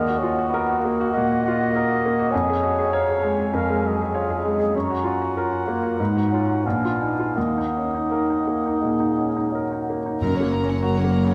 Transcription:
Already playing: grand piano D#2, bassoon D#4, clarinet A#4, cor anglais D#5, flute F#5
0.08 grand piano F#4
0.18 bassoon C#4, clarinet F#4
0.23 grand piano F4
0.39 grand piano F#4
0.49 bassoon B3, cor anglais D#5
0.54 grand piano A#4
0.70 grand piano F#4
0.80 bassoon A#3
0.85 grand piano A#3
1.01 grand piano F#4
1.11 bassoon A#3, clarinet D#5, cor anglais F#5
1.17 grand piano A#2
1.32 grand piano F#4
1.46 grand piano F4, cor anglais F#5
1.61 grand piano F#4
1.71 bassoon A#3, flute F#5
1.75 grand piano A#4, cor anglais D#5
1.91 grand piano F#4
2.06 grand piano A#3
2.19 grand piano F#4
2.31 grand piano F2, bassoon C#4, clarinet C#5, flute G#5
2.49 grand piano G#4
2.63 grand piano F#4
2.79 grand piano G#4
2.92 grand piano C#5, cor anglais F5, flute A#5
3.09 grand piano G#4
3.23 grand piano G#3, flute G#5
3.40 grand piano G#4
3.53 grand piano F2, bassoon C#4, clarinet A#4, cor anglais F5
3.70 grand piano G#3
3.84 grand piano F#3, cor anglais D#5
4.01 grand piano G#4
4.14 bassoon F4, clarinet G#4, grand piano C#5
4.30 grand piano G#4
4.43 grand piano G#3, bassoon D#4
4.59 grand piano G#4
4.74 grand piano F#2, bassoon C#4, clarinet F#4, cor anglais C#5, flute A#5
4.90 grand piano F#4
5.04 grand piano F4, cor anglais F#5
5.22 grand piano F#4
5.36 bassoon C#4, clarinet F4, grand piano A#4, flute A#5
5.52 grand piano F#4
5.66 bassoon A#3, grand piano A#3
5.83 grand piano F#4
5.98 grand piano G#2, bassoon B3, clarinet D#4
6.17 grand piano F#4
6.32 bassoon C#4, grand piano F4
6.49 grand piano F#4
6.64 grand piano A#1, bassoon B3, clarinet D4, cor anglais F5, flute G#5
6.85 grand piano F4
7.00 grand piano D#4, flute G#5
7.19 grand piano F4
7.36 grand piano D#2, bassoon A#3, clarinet D#4, cor anglais D#5, flute F#5
7.58 grand piano D#4
7.77 grand piano C#4
7.94 grand piano D#4
8.09 bassoon A#3, grand piano A#4
8.30 grand piano D#4
8.47 grand piano A#3
8.66 grand piano D#4
8.81 grand piano A#2, bassoon G#3
9.00 grand piano D#4
9.18 grand piano C#4
9.36 grand piano D#4
9.52 bassoon F#3, grand piano A#4
9.72 grand piano D#4
9.90 grand piano A#3
10.06 grand piano D#4
10.20 double bass section F#1, timpani F#2, cello section F#2, grand piano F#2, viola section A#3, violin section A#4 A#5
10.35 viola section C#4, violin section C#5 F#5
10.40 grand piano A#3
10.52 viola section A#3, violin section A#4 A#5
10.63 grand piano C#4, violin section C#5
10.68 viola section C#4, violin section F#5
10.81 viola section A#3, grand piano F#4, violin section A#4
10.85 violin section A#5
10.95 viola section C#4, violin section C#5
10.99 violin section F#5
11.04 grand piano A#3
11.09 viola section A#3, violin section A#4
11.14 violin section A#5
11.24 grand piano C#3, viola section C#4, violin section C#5 F#5

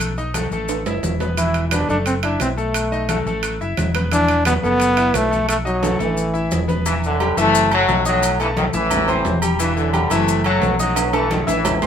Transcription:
Already playing: fingered electric bass B1, grand piano A3 A4
0.00 high conga, high timbale, maracas
0.17 grand piano D#4 D#5, high conga, maracas
0.34 grand piano A3 A4, high conga, high timbale, low timbale, maracas
0.51 fingered electric bass A1, grand piano A3 A4, high conga, maracas
0.68 high conga, high timbale, maracas
0.86 fingered electric bass F#1, grand piano E4 E5, high conga, low timbale, maracas
1.03 fingered electric bass E1, high conga, low timbale, maracas
1.20 grand piano B3 B4, high conga, low timbale, maracas
1.37 grand piano E3 E4, trombone E4, high conga, high timbale, maracas
1.54 high conga, high timbale, maracas
1.68 grand piano B3, trombone D4 E4, high conga, high timbale, low timbale
1.72 grand piano B4, maracas
1.89 fingered electric bass F#1, grand piano A3 A4, trombone D4, high conga, maracas
2.06 trombone C4, high conga, high timbale, maracas
2.23 trombone D4, grand piano E4 E5, high conga, high timbale, maracas
2.40 fingered electric bass B1, trombone C4, high conga, high timbale, low timbale, maracas
2.57 grand piano A3 A4, trombone A3, maracas
2.74 high conga, high timbale, maracas
2.92 grand piano D#4 D#5, high conga, maracas
3.09 grand piano A3 A4, high conga, high timbale, low timbale, maracas
3.26 fingered electric bass A1, grand piano A3 A4, high conga, maracas
3.43 high conga, high timbale, maracas
3.61 fingered electric bass F#1, grand piano E4 E5, high conga, maracas
3.77 fingered electric bass E1, high conga, high timbale, low timbale, maracas
3.95 grand piano B3 B4, high conga, high timbale, maracas
4.12 grand piano E3 E4, trombone D4, high conga, high timbale, maracas
4.29 high timbale, maracas
4.45 grand piano B3 B4, trombone B3, high conga, high timbale, low timbale, maracas
4.63 fingered electric bass F#1, grand piano A3 A4, trombone B3, high conga, maracas
4.80 high conga, high timbale, maracas
4.97 grand piano E4 E5, high conga, high timbale, maracas
5.14 fingered electric bass B1, trombone A3, high conga, high timbale, low timbale, maracas
5.31 grand piano A3 A4, high conga, maracas
5.49 trombone A3, high conga, high timbale, maracas
5.65 trombone F#3, grand piano D#4 D#5, high conga, maracas
5.83 grand piano A3 A4, high conga, high timbale, maracas
5.99 fingered electric bass A1, trombone E3, grand piano A3 A4, high conga, high timbale, maracas
6.17 maracas
6.34 grand piano E4 E5, high conga, maracas
6.51 fingered electric bass E1, high conga, low timbale, maracas
6.68 grand piano B3 B4, high conga, low timbale, maracas
6.86 trombone section G2 E3, grand piano E3 E4 E5, high conga, low agogo, maracas
7.03 trombone section F#2 D3, high conga, maracas
7.20 grand piano G3 G4 G5, high conga, low timbale, low agogo, maracas
7.37 fingered electric bass F#1, trombone section C3 A3, grand piano E3 E4 E5, high conga, low agogo, maracas
7.55 high conga, maracas
7.71 trombone section A2 F#3, grand piano A3 A4 A5, high conga, low agogo, maracas
7.88 fingered electric bass B1, high conga, low timbale, maracas
8.05 trombone section A2 F#3, grand piano D#4 D#5 D#6, high conga, maracas
8.23 high conga, low agogo, maracas
8.40 trombone section G2 E3, grand piano A3 A4 A5, high conga, low agogo, maracas
8.57 trombone section F#2 D#3, high conga, low timbale, low agogo, maracas
8.73 fingered electric bass A1, trombone section A2 E3, grand piano E4 E5 E6, high conga, maracas
8.91 high conga, low conga, low agogo, maracas
9.08 grand piano C4 C5 C6, high conga, low conga, low agogo, maracas
9.25 fingered electric bass E1, high conga, low timbale, maracas
9.42 grand piano G3 G4 G5, low agogo, maracas
9.59 trombone section G2 E3, grand piano E3 E4 E5, high conga, low agogo, maracas
9.76 trombone section F#2 D3, high conga, maracas
9.93 grand piano G3 G4 G5, high conga, low timbale, low agogo, maracas
10.10 fingered electric bass F#1, trombone section C3 A3, grand piano E3 E4 E5, high conga, low agogo, maracas
10.28 high conga, maracas
10.44 trombone section A2 F#3, grand piano A3 A4 A5, high conga, low agogo, maracas
10.62 fingered electric bass B1, high conga, low timbale, maracas
10.79 trombone section A2 F#3, grand piano D#4 D#5 D#6, high conga, maracas
10.96 high conga, high timbale, low agogo, maracas
11.13 trombone section G2 E3, grand piano A3 A4 A5, high conga, high timbale, low agogo, maracas
11.31 trombone section F#2 D#3, high conga, low agogo, maracas
11.47 fingered electric bass A1, trombone section A2 E3, grand piano E4 E5 E6, high conga, high timbale, maracas
11.65 high conga, low conga, low timbale, low agogo, maracas
11.82 grand piano C4 C5 C6, high conga, low conga, low timbale, low agogo, maracas

